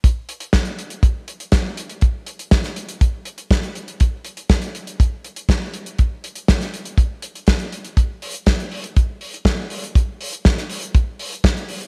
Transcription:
\new DrumStaff \with { instrumentName = "Drums" } \drummode { \time 4/4 \tempo 4 = 121 <hh bd>8 hh16 hh16 <hh bd sn>16 hh16 hh16 hh16 <hh bd>8 hh16 hh16 <hh bd sn>8 hh16 hh16 | <hh bd>8 hh16 hh16 <hh bd sn>16 <hh sn>16 hh16 hh16 <hh bd>8 hh16 hh16 <hh bd sn>16 hh16 hh16 hh16 | <hh bd>8 hh16 hh16 <hh bd sn>16 hh16 hh16 hh16 <hh bd>8 hh16 hh16 <hh bd sn>8 hh16 hh16 | <hh bd>8 hh16 hh16 <hh bd sn>16 <hh sn>16 hh16 hh16 <hh bd>8 hh16 hh16 <hh bd sn>16 hh16 hh16 hh16 |
<hh bd>8 hho16 hh16 <hh bd sn>16 hh16 hho16 hh16 <hh bd>8 hho16 hh16 <hh bd sn>8 hho16 hh16 | <hh bd>8 hho16 hh16 <hh bd sn>16 <hh sn>16 hho16 hh16 <hh bd>8 hho16 hh16 <hh bd sn>16 hh16 hho16 hh16 | }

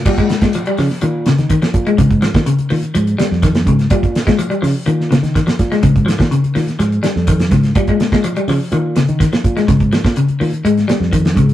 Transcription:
<<
  \new Staff \with { instrumentName = "Clean electric guitar" } { \clef bass \time 4/4 \key bes \dorian \tempo 4 = 125 g16 aes8 aes16 f16 g16 f8 ees8 des8 ees16 f8 aes16 | des8 f16 ees16 des8 ees8 f8 g8 ees8 des8 | g16 r8 aes16 f16 g16 f8 ees8 des8 ees16 f8 aes16 | des8 f16 ees16 des8 ees8 f8 g8 ees8 des8 |
g16 aes8 aes16 f16 g16 f8 ees8 des8 ees16 f8 aes16 | des8 f16 r16 des8 ees8 aes8 g8 ees8 des8 | }
  \new Staff \with { instrumentName = "Fingered electric bass" } { \clef bass \time 4/4 \key bes \dorian bes,8. bes,8 r16 des16 r16 bes,8. ees8 r16 bes,8 | aes,8. bes,16 r8 bes,16 r16 aes,8 r16 f,8. aes,8 | bes,8. bes,8 r16 des16 r16 bes,8. ees8 r16 bes,8 | aes,8. bes,16 r8 bes,16 r16 aes,8 r16 f,8. aes,8 |
bes,8. bes,8 r16 des16 r16 bes,8. ees8 r16 bes,8 | aes,8. bes,16 r8 bes,16 r16 aes,8 r16 f,8. aes,8 | }
  \new DrumStaff \with { instrumentName = "Drums" } \drummode { \time 4/4 <cymc bd sn>16 <hh bd>16 <hh sn>16 <hh bd sn>16 hh16 hh16 <hho sn>16 sn16 hh8 <hh sn>16 <hh sn>16 <hh bd>16 <hh sn>16 <hh bd>16 hh16 | <hh bd>16 <hh bd>16 <hh sn>16 <hh bd sn>16 hh16 hh16 hho16 hh16 hh16 hh16 <hh sn>16 sn16 <hh bd sn>16 <hh sn>16 <hh bd>16 <hh sn>16 | <hh bd>16 <hh bd>16 <hh sn>16 <hh bd sn>16 hh16 hh16 <hho sn>8 hh16 sn16 <hh sn>16 <hh sn>16 <hh bd sn>16 <hh sn>16 <hh bd sn>16 <hh sn>16 | <hh bd>16 <hh bd>16 <hh sn>16 <hh bd sn>16 hh16 hh16 <hho sn>16 <hh sn>16 <hh sn>16 hh16 <hh sn>16 sn16 <hh bd>16 <hh sn>16 <hh bd sn>16 <hh sn>16 |
<hh bd>16 <hh bd>16 <hh sn>16 <hh bd sn>16 hh16 hh16 <hho sn>8 hh8 <hh sn>16 hh16 <hh bd sn>16 <hh sn>16 <hh bd>16 <hh sn>16 | <hh bd sn>16 <hh bd>16 <hh sn>16 <hh bd sn>16 hh16 hh16 hho16 hh16 hh16 <hh sn>16 <hh sn>16 sn16 <hh bd>16 <hh sn>16 <hh bd>16 hh16 | }
>>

